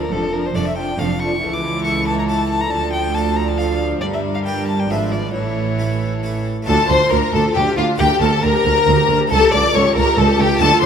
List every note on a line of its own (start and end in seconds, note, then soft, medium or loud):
0.00 0.10 D4 soft
0.00 0.11 A4 soft
0.00 0.13 A#4 medium
0.11 0.48 F1 medium
0.11 0.48 F2 medium
0.11 0.47 F2 soft
0.11 0.32 F3 medium
0.11 0.33 D4 medium
0.11 0.34 A4 medium
0.11 0.32 A4 medium
0.33 0.54 F3 soft
0.33 0.55 D4 soft
0.33 0.53 A4 soft
0.33 0.48 A#4 medium
0.46 0.56 C5 medium
0.55 0.91 F1 medium
0.55 0.90 F2 soft
0.55 0.92 F2 medium
0.55 0.75 F3 soft
0.55 0.86 A3 soft
0.55 0.86 D4 soft
0.55 0.76 D4 soft
0.55 0.75 A4 soft
0.55 0.87 A4 soft
0.55 0.66 D5 medium
0.67 0.77 E5 medium
0.76 0.97 F3 soft
0.76 0.97 D4 soft
0.76 0.97 A4 soft
0.76 1.00 G5 medium
0.98 1.35 F1 medium
0.98 1.33 F2 soft
0.98 1.35 F2 medium
0.98 1.18 F3 soft
0.98 1.29 A3 soft
0.98 1.20 D4 soft
0.98 1.30 D4 soft
0.98 1.18 A4 soft
0.98 1.30 A4 soft
0.98 1.22 F5 medium
1.19 1.41 F3 soft
1.19 1.42 D4 soft
1.19 1.40 A4 soft
1.19 1.55 C#6 medium
1.42 2.68 C#2 medium
1.42 2.68 C#2 soft
1.42 2.68 C#2 medium
1.42 2.69 E3 medium
1.42 2.68 E4 medium
1.42 3.99 A4 medium
1.54 1.84 D6 medium
1.84 2.16 A3 soft
1.84 2.16 E4 soft
1.84 2.16 A4 soft
1.84 2.06 C#6 medium
2.07 2.18 A5 medium
2.19 2.23 A#5 medium
2.29 2.60 A3 soft
2.29 2.60 E4 soft
2.29 2.61 A4 soft
2.29 2.49 A5 medium
2.49 2.63 A5 medium
2.61 2.72 A#5 medium
2.71 3.98 D2 soft
2.71 4.03 D2 medium
2.71 4.00 F3 medium
2.71 5.31 D4 medium
2.71 2.92 A5 medium
2.93 3.16 G5 medium
3.15 3.47 D4 soft
3.15 3.46 F4 soft
3.15 3.47 A4 soft
3.15 3.37 A5 medium
3.36 3.50 A#5 medium
3.48 3.59 A5 medium
3.58 3.90 D4 soft
3.58 3.90 F4 soft
3.58 3.91 A4 soft
3.58 3.80 F5 medium
4.01 4.88 G1 medium
4.01 4.86 G2 soft
4.01 4.88 G2 medium
4.01 4.90 G3 medium
4.01 4.90 A#4 medium
4.01 4.06 D5 medium
4.13 4.21 E5 medium
4.34 4.39 F5 medium
4.45 4.78 D4 soft
4.45 4.78 G4 soft
4.45 4.79 A#4 soft
4.45 4.67 G5 medium
4.68 4.81 A5 medium
4.79 4.92 G5 medium
4.90 5.35 G#1 soft
4.90 5.30 G#2 soft
4.90 5.35 G#2 medium
4.90 5.34 F3 soft
4.90 5.30 D4 soft
4.90 5.30 F4 soft
4.90 5.34 B4 soft
4.90 5.31 B4 soft
4.90 5.13 E5 medium
5.11 5.34 D5 medium
5.34 6.45 A1 medium
5.34 6.43 A2 soft
5.34 6.45 A2 soft
5.34 6.45 E3 medium
5.34 6.45 E4 medium
5.34 6.45 A4 soft
5.34 6.43 C#5 medium
5.78 6.11 A3 soft
5.78 6.11 E4 soft
5.78 6.11 A4 soft
6.23 6.55 A3 soft
6.23 6.55 E4 soft
6.23 6.56 A4 soft
6.62 7.93 A3 medium
6.62 7.94 D4 medium
6.62 7.95 F4 medium
6.67 6.87 D2 medium
6.67 6.76 D2 medium
6.67 6.78 D4 medium
6.67 6.88 A4 medium
6.67 6.88 A5 loud
6.78 6.89 F4 medium
6.88 7.09 D2 medium
6.88 6.97 D2 medium
6.88 6.98 D2 medium
6.88 7.01 D4 medium
6.88 7.10 C5 medium
6.88 7.11 C6 loud
7.01 7.12 F4 medium
7.10 7.31 D2 medium
7.10 7.20 D2 medium
7.10 7.22 D4 medium
7.10 7.18 A#4 medium
7.10 7.33 A#4 medium
7.10 7.34 A#5 medium
7.23 7.34 F4 medium
7.33 7.53 D2 medium
7.33 7.41 D2 medium
7.33 7.42 D2 medium
7.33 7.45 D4 medium
7.33 7.54 A4 medium
7.33 7.55 A4 medium
7.33 7.42 A5 medium
7.46 7.56 F4 medium
7.55 7.75 D2 medium
7.55 7.63 D2 medium
7.55 7.64 D2 medium
7.55 7.66 D4 medium
7.55 7.76 G4 medium
7.55 7.78 G4 medium
7.55 7.64 G5 medium
7.68 7.78 F4 medium
7.76 7.97 D2 medium
7.76 7.85 D2 medium
7.76 7.88 D4 medium
7.76 7.85 F4 medium
7.76 7.99 F4 medium
7.76 7.86 F5 loud
7.88 7.99 F4 medium
7.96 8.19 D2 medium
7.96 8.07 D2 medium
7.96 8.08 D2 medium
7.96 9.25 D4 medium
7.96 9.26 G4 medium
7.96 8.07 G4 medium
7.96 8.10 A#4 medium
7.96 8.21 G5 loud
8.00 8.21 G4 medium
8.10 8.21 G4 medium
8.20 8.40 D2 medium
8.20 8.29 D2 medium
8.20 8.45 A4 medium
8.20 8.44 A4 medium
8.20 8.32 A#4 medium
8.20 8.43 A5 medium
8.32 8.43 G4 medium
8.43 8.51 D2 medium
8.43 8.63 D2 medium
8.43 8.51 D2 medium
8.43 9.20 A#4 medium
8.43 8.53 A#4 medium
8.43 9.19 A#4 medium
8.43 9.20 A#5 loud
8.55 8.65 G4 medium
8.64 8.84 D2 medium
8.64 8.73 D2 medium
8.64 8.76 A#4 medium
8.77 8.87 G4 medium
8.86 9.06 D2 medium
8.86 8.95 D2 medium
8.86 8.97 A#4 medium
8.97 9.09 G4 medium
9.08 9.16 D2 medium
9.08 9.28 D2 medium
9.08 9.17 D2 medium
9.08 9.20 A#4 medium
9.19 9.30 G4 medium
9.27 9.50 C#2 medium
9.27 9.39 C#2 medium
9.27 10.55 E4 medium
9.27 10.56 A4 medium
9.27 9.50 A4 loud
9.27 9.40 A4 medium
9.27 9.53 A4 medium
9.31 9.40 C#2 medium
9.31 9.51 A5 loud
9.41 9.52 G4 medium
9.51 9.60 C#2 medium
9.51 9.72 C#2 medium
9.51 9.61 C#2 medium
9.51 9.63 A4 medium
9.51 9.76 D5 medium
9.51 9.74 D5 loud
9.51 9.75 D6 loud
9.62 9.74 G4 medium
9.73 9.93 C#2 medium
9.73 9.82 C#2 medium
9.73 9.83 C#2 medium
9.73 9.84 A4 medium
9.73 9.96 C#5 medium
9.73 9.95 C#5 medium
9.73 9.97 C#6 loud
9.85 9.96 G4 medium
9.95 10.04 C#2 medium
9.95 10.15 C#2 medium
9.95 10.05 C#2 medium
9.95 10.06 A4 medium
9.95 10.20 A#4 medium
9.95 10.18 A#4 medium
9.95 10.17 A#5 loud
10.07 10.18 G4 medium
10.17 10.25 C#2 medium
10.17 10.37 C#2 medium
10.17 10.26 C#2 medium
10.17 10.27 A4 medium
10.17 10.39 A4 medium
10.17 10.42 A4 medium
10.17 10.39 A5 loud
10.28 10.39 G4 medium
10.38 10.47 C#2 medium
10.38 10.59 C#2 medium
10.38 10.61 G4 medium
10.38 10.63 G4 medium
10.38 10.49 A4 medium
10.38 10.61 G5 loud
10.49 10.61 G4 medium
10.55 10.86 A3 medium
10.55 10.86 F4 medium
10.55 10.86 A4 medium
10.60 10.80 D2 medium
10.60 10.69 D2 medium
10.60 10.71 D4 medium
10.60 10.83 A4 loud
10.60 10.82 A5 loud
10.72 10.83 F4 medium
10.81 10.86 D2 medium
10.81 10.86 D4 medium
10.81 10.86 C5 loud
10.81 10.86 C6 loud